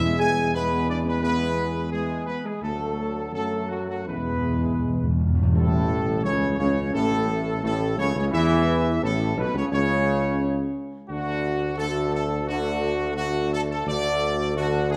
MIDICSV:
0, 0, Header, 1, 6, 480
1, 0, Start_track
1, 0, Key_signature, 3, "major"
1, 0, Tempo, 692841
1, 1816, Time_signature, 4, 2, 24, 8
1, 1817, Tempo, 731707
1, 3737, Tempo, 701754
1, 4697, Tempo, 690449
1, 10268, End_track
2, 0, Start_track
2, 0, Title_t, "Trumpet section"
2, 0, Program_c, 0, 61
2, 0, Note_on_c, 0, 76, 113
2, 124, Note_off_c, 0, 76, 0
2, 134, Note_on_c, 0, 80, 113
2, 357, Note_off_c, 0, 80, 0
2, 378, Note_on_c, 0, 71, 109
2, 599, Note_off_c, 0, 71, 0
2, 615, Note_on_c, 0, 74, 97
2, 669, Note_off_c, 0, 74, 0
2, 741, Note_on_c, 0, 71, 92
2, 838, Note_off_c, 0, 71, 0
2, 847, Note_on_c, 0, 71, 115
2, 1304, Note_off_c, 0, 71, 0
2, 1331, Note_on_c, 0, 68, 91
2, 1556, Note_off_c, 0, 68, 0
2, 1569, Note_on_c, 0, 71, 98
2, 1684, Note_off_c, 0, 71, 0
2, 1697, Note_on_c, 0, 68, 87
2, 1817, Note_off_c, 0, 68, 0
2, 1818, Note_on_c, 0, 69, 91
2, 2259, Note_off_c, 0, 69, 0
2, 2283, Note_on_c, 0, 69, 93
2, 2509, Note_off_c, 0, 69, 0
2, 2517, Note_on_c, 0, 66, 76
2, 2636, Note_off_c, 0, 66, 0
2, 2646, Note_on_c, 0, 66, 80
2, 2763, Note_off_c, 0, 66, 0
2, 2766, Note_on_c, 0, 71, 88
2, 3468, Note_off_c, 0, 71, 0
2, 3734, Note_on_c, 0, 69, 104
2, 4190, Note_off_c, 0, 69, 0
2, 4207, Note_on_c, 0, 73, 107
2, 4436, Note_off_c, 0, 73, 0
2, 4444, Note_on_c, 0, 73, 93
2, 4673, Note_off_c, 0, 73, 0
2, 4687, Note_on_c, 0, 69, 111
2, 5144, Note_off_c, 0, 69, 0
2, 5171, Note_on_c, 0, 69, 101
2, 5397, Note_off_c, 0, 69, 0
2, 5417, Note_on_c, 0, 73, 110
2, 5530, Note_off_c, 0, 73, 0
2, 5541, Note_on_c, 0, 73, 94
2, 5595, Note_off_c, 0, 73, 0
2, 5653, Note_on_c, 0, 76, 109
2, 6114, Note_off_c, 0, 76, 0
2, 6142, Note_on_c, 0, 69, 106
2, 6367, Note_off_c, 0, 69, 0
2, 6389, Note_on_c, 0, 71, 101
2, 6506, Note_off_c, 0, 71, 0
2, 6514, Note_on_c, 0, 73, 104
2, 6566, Note_off_c, 0, 73, 0
2, 6620, Note_on_c, 0, 73, 111
2, 7310, Note_off_c, 0, 73, 0
2, 7579, Note_on_c, 0, 66, 111
2, 8029, Note_off_c, 0, 66, 0
2, 8054, Note_on_c, 0, 69, 114
2, 8277, Note_off_c, 0, 69, 0
2, 8298, Note_on_c, 0, 69, 96
2, 8517, Note_off_c, 0, 69, 0
2, 8533, Note_on_c, 0, 66, 113
2, 8982, Note_off_c, 0, 66, 0
2, 9010, Note_on_c, 0, 66, 110
2, 9238, Note_off_c, 0, 66, 0
2, 9266, Note_on_c, 0, 69, 118
2, 9320, Note_off_c, 0, 69, 0
2, 9386, Note_on_c, 0, 69, 95
2, 9498, Note_off_c, 0, 69, 0
2, 9512, Note_on_c, 0, 74, 124
2, 9959, Note_off_c, 0, 74, 0
2, 9990, Note_on_c, 0, 66, 112
2, 10207, Note_off_c, 0, 66, 0
2, 10225, Note_on_c, 0, 68, 110
2, 10268, Note_off_c, 0, 68, 0
2, 10268, End_track
3, 0, Start_track
3, 0, Title_t, "French horn section"
3, 0, Program_c, 1, 60
3, 0, Note_on_c, 1, 64, 99
3, 119, Note_off_c, 1, 64, 0
3, 133, Note_on_c, 1, 68, 90
3, 357, Note_off_c, 1, 68, 0
3, 376, Note_on_c, 1, 59, 88
3, 598, Note_off_c, 1, 59, 0
3, 608, Note_on_c, 1, 62, 95
3, 730, Note_on_c, 1, 59, 88
3, 731, Note_off_c, 1, 62, 0
3, 841, Note_off_c, 1, 59, 0
3, 849, Note_on_c, 1, 59, 98
3, 1222, Note_off_c, 1, 59, 0
3, 1340, Note_on_c, 1, 56, 77
3, 1561, Note_off_c, 1, 56, 0
3, 1576, Note_on_c, 1, 59, 77
3, 1687, Note_off_c, 1, 59, 0
3, 1697, Note_on_c, 1, 56, 74
3, 1808, Note_off_c, 1, 56, 0
3, 1813, Note_on_c, 1, 57, 77
3, 2271, Note_off_c, 1, 57, 0
3, 2278, Note_on_c, 1, 57, 69
3, 2506, Note_off_c, 1, 57, 0
3, 2526, Note_on_c, 1, 54, 67
3, 2582, Note_off_c, 1, 54, 0
3, 2647, Note_on_c, 1, 54, 63
3, 2763, Note_off_c, 1, 54, 0
3, 2763, Note_on_c, 1, 59, 75
3, 3467, Note_off_c, 1, 59, 0
3, 3733, Note_on_c, 1, 57, 85
3, 4189, Note_off_c, 1, 57, 0
3, 4214, Note_on_c, 1, 61, 90
3, 4439, Note_off_c, 1, 61, 0
3, 4458, Note_on_c, 1, 61, 90
3, 4680, Note_off_c, 1, 61, 0
3, 4697, Note_on_c, 1, 57, 99
3, 5150, Note_off_c, 1, 57, 0
3, 5168, Note_on_c, 1, 57, 95
3, 5396, Note_off_c, 1, 57, 0
3, 5411, Note_on_c, 1, 61, 87
3, 5535, Note_off_c, 1, 61, 0
3, 5543, Note_on_c, 1, 61, 98
3, 5654, Note_off_c, 1, 61, 0
3, 5656, Note_on_c, 1, 64, 102
3, 6115, Note_off_c, 1, 64, 0
3, 6144, Note_on_c, 1, 57, 85
3, 6378, Note_on_c, 1, 59, 94
3, 6384, Note_off_c, 1, 57, 0
3, 6492, Note_off_c, 1, 59, 0
3, 6498, Note_on_c, 1, 61, 87
3, 6609, Note_off_c, 1, 61, 0
3, 6618, Note_on_c, 1, 61, 108
3, 7308, Note_off_c, 1, 61, 0
3, 7573, Note_on_c, 1, 62, 83
3, 7574, Note_on_c, 1, 66, 75
3, 8026, Note_off_c, 1, 62, 0
3, 8026, Note_off_c, 1, 66, 0
3, 8056, Note_on_c, 1, 66, 73
3, 8057, Note_on_c, 1, 62, 80
3, 8504, Note_off_c, 1, 66, 0
3, 8505, Note_off_c, 1, 62, 0
3, 8540, Note_on_c, 1, 62, 91
3, 8540, Note_on_c, 1, 66, 82
3, 8986, Note_off_c, 1, 62, 0
3, 8986, Note_off_c, 1, 66, 0
3, 9016, Note_on_c, 1, 62, 92
3, 9017, Note_on_c, 1, 66, 90
3, 9478, Note_off_c, 1, 62, 0
3, 9478, Note_off_c, 1, 66, 0
3, 9512, Note_on_c, 1, 66, 78
3, 9514, Note_on_c, 1, 62, 86
3, 9959, Note_off_c, 1, 66, 0
3, 9960, Note_off_c, 1, 62, 0
3, 9983, Note_on_c, 1, 62, 84
3, 9984, Note_on_c, 1, 66, 85
3, 10268, Note_off_c, 1, 62, 0
3, 10268, Note_off_c, 1, 66, 0
3, 10268, End_track
4, 0, Start_track
4, 0, Title_t, "Trombone section"
4, 0, Program_c, 2, 61
4, 0, Note_on_c, 2, 52, 76
4, 0, Note_on_c, 2, 56, 85
4, 253, Note_off_c, 2, 52, 0
4, 253, Note_off_c, 2, 56, 0
4, 371, Note_on_c, 2, 52, 75
4, 373, Note_on_c, 2, 56, 70
4, 824, Note_off_c, 2, 52, 0
4, 825, Note_off_c, 2, 56, 0
4, 848, Note_on_c, 2, 56, 74
4, 851, Note_on_c, 2, 52, 80
4, 1304, Note_off_c, 2, 56, 0
4, 1306, Note_off_c, 2, 52, 0
4, 1331, Note_on_c, 2, 56, 72
4, 1332, Note_on_c, 2, 52, 63
4, 1786, Note_off_c, 2, 56, 0
4, 1787, Note_off_c, 2, 52, 0
4, 1817, Note_on_c, 2, 54, 76
4, 1820, Note_on_c, 2, 57, 76
4, 2259, Note_off_c, 2, 57, 0
4, 2281, Note_off_c, 2, 54, 0
4, 2287, Note_on_c, 2, 57, 62
4, 2289, Note_on_c, 2, 54, 69
4, 2748, Note_off_c, 2, 57, 0
4, 2749, Note_off_c, 2, 54, 0
4, 2769, Note_on_c, 2, 52, 73
4, 2772, Note_on_c, 2, 56, 72
4, 3516, Note_off_c, 2, 52, 0
4, 3518, Note_off_c, 2, 56, 0
4, 3729, Note_on_c, 2, 45, 93
4, 4187, Note_off_c, 2, 45, 0
4, 4213, Note_on_c, 2, 49, 89
4, 4440, Note_off_c, 2, 49, 0
4, 4448, Note_on_c, 2, 49, 85
4, 4675, Note_off_c, 2, 49, 0
4, 4690, Note_on_c, 2, 45, 88
4, 5146, Note_off_c, 2, 45, 0
4, 5167, Note_on_c, 2, 45, 86
4, 5396, Note_off_c, 2, 45, 0
4, 5413, Note_on_c, 2, 49, 87
4, 5513, Note_off_c, 2, 49, 0
4, 5522, Note_on_c, 2, 49, 79
4, 5642, Note_off_c, 2, 49, 0
4, 5642, Note_on_c, 2, 52, 120
4, 6108, Note_off_c, 2, 52, 0
4, 6138, Note_on_c, 2, 45, 82
4, 6364, Note_off_c, 2, 45, 0
4, 6377, Note_on_c, 2, 47, 85
4, 6492, Note_off_c, 2, 47, 0
4, 6505, Note_on_c, 2, 49, 85
4, 6615, Note_off_c, 2, 49, 0
4, 6623, Note_on_c, 2, 49, 102
4, 7311, Note_off_c, 2, 49, 0
4, 7584, Note_on_c, 2, 57, 80
4, 7585, Note_on_c, 2, 50, 87
4, 8031, Note_off_c, 2, 57, 0
4, 8032, Note_off_c, 2, 50, 0
4, 8060, Note_on_c, 2, 50, 85
4, 8062, Note_on_c, 2, 57, 76
4, 8506, Note_off_c, 2, 50, 0
4, 8507, Note_off_c, 2, 57, 0
4, 8543, Note_on_c, 2, 57, 83
4, 8545, Note_on_c, 2, 50, 93
4, 8987, Note_off_c, 2, 57, 0
4, 8988, Note_off_c, 2, 50, 0
4, 9014, Note_on_c, 2, 50, 78
4, 9017, Note_on_c, 2, 57, 80
4, 9477, Note_off_c, 2, 50, 0
4, 9478, Note_off_c, 2, 57, 0
4, 9509, Note_on_c, 2, 50, 87
4, 9510, Note_on_c, 2, 57, 86
4, 9957, Note_off_c, 2, 50, 0
4, 9958, Note_off_c, 2, 57, 0
4, 9991, Note_on_c, 2, 57, 89
4, 9992, Note_on_c, 2, 50, 94
4, 10268, Note_off_c, 2, 50, 0
4, 10268, Note_off_c, 2, 57, 0
4, 10268, End_track
5, 0, Start_track
5, 0, Title_t, "Timpani"
5, 0, Program_c, 3, 47
5, 0, Note_on_c, 3, 40, 92
5, 587, Note_off_c, 3, 40, 0
5, 2776, Note_on_c, 3, 40, 36
5, 2822, Note_off_c, 3, 40, 0
5, 2830, Note_on_c, 3, 40, 36
5, 2870, Note_off_c, 3, 40, 0
5, 2878, Note_on_c, 3, 40, 39
5, 2924, Note_off_c, 3, 40, 0
5, 2932, Note_on_c, 3, 40, 41
5, 2978, Note_off_c, 3, 40, 0
5, 2986, Note_on_c, 3, 40, 46
5, 3025, Note_off_c, 3, 40, 0
5, 3033, Note_on_c, 3, 40, 46
5, 3082, Note_off_c, 3, 40, 0
5, 3089, Note_on_c, 3, 40, 49
5, 3131, Note_off_c, 3, 40, 0
5, 3139, Note_on_c, 3, 40, 50
5, 3183, Note_off_c, 3, 40, 0
5, 3191, Note_on_c, 3, 40, 57
5, 3231, Note_off_c, 3, 40, 0
5, 3239, Note_on_c, 3, 40, 61
5, 3284, Note_off_c, 3, 40, 0
5, 3292, Note_on_c, 3, 40, 63
5, 3336, Note_off_c, 3, 40, 0
5, 3344, Note_on_c, 3, 40, 64
5, 3392, Note_off_c, 3, 40, 0
5, 3399, Note_on_c, 3, 40, 80
5, 3440, Note_off_c, 3, 40, 0
5, 3448, Note_on_c, 3, 40, 82
5, 3497, Note_off_c, 3, 40, 0
5, 3504, Note_on_c, 3, 40, 81
5, 3548, Note_off_c, 3, 40, 0
5, 3556, Note_on_c, 3, 40, 83
5, 3599, Note_off_c, 3, 40, 0
5, 3607, Note_on_c, 3, 40, 98
5, 3650, Note_off_c, 3, 40, 0
5, 3658, Note_on_c, 3, 40, 107
5, 3704, Note_off_c, 3, 40, 0
5, 3736, Note_on_c, 3, 45, 101
5, 4431, Note_off_c, 3, 45, 0
5, 10268, End_track
6, 0, Start_track
6, 0, Title_t, "Tuba"
6, 0, Program_c, 4, 58
6, 0, Note_on_c, 4, 40, 89
6, 1623, Note_off_c, 4, 40, 0
6, 1815, Note_on_c, 4, 38, 71
6, 2283, Note_on_c, 4, 42, 63
6, 2293, Note_off_c, 4, 38, 0
6, 2769, Note_on_c, 4, 40, 67
6, 2779, Note_off_c, 4, 42, 0
6, 3516, Note_off_c, 4, 40, 0
6, 3732, Note_on_c, 4, 33, 91
6, 4218, Note_on_c, 4, 37, 96
6, 4229, Note_off_c, 4, 33, 0
6, 4451, Note_off_c, 4, 37, 0
6, 4455, Note_on_c, 4, 37, 100
6, 4678, Note_off_c, 4, 37, 0
6, 4692, Note_on_c, 4, 33, 84
6, 5147, Note_off_c, 4, 33, 0
6, 5174, Note_on_c, 4, 33, 90
6, 5414, Note_on_c, 4, 37, 90
6, 5425, Note_off_c, 4, 33, 0
6, 5532, Note_off_c, 4, 37, 0
6, 5536, Note_on_c, 4, 37, 88
6, 5650, Note_off_c, 4, 37, 0
6, 5658, Note_on_c, 4, 40, 104
6, 6116, Note_off_c, 4, 40, 0
6, 6141, Note_on_c, 4, 33, 90
6, 6366, Note_off_c, 4, 33, 0
6, 6378, Note_on_c, 4, 35, 90
6, 6433, Note_off_c, 4, 35, 0
6, 6496, Note_on_c, 4, 37, 88
6, 6552, Note_off_c, 4, 37, 0
6, 6618, Note_on_c, 4, 37, 92
6, 7309, Note_off_c, 4, 37, 0
6, 7576, Note_on_c, 4, 38, 88
6, 9474, Note_off_c, 4, 38, 0
6, 9501, Note_on_c, 4, 38, 100
6, 10268, Note_off_c, 4, 38, 0
6, 10268, End_track
0, 0, End_of_file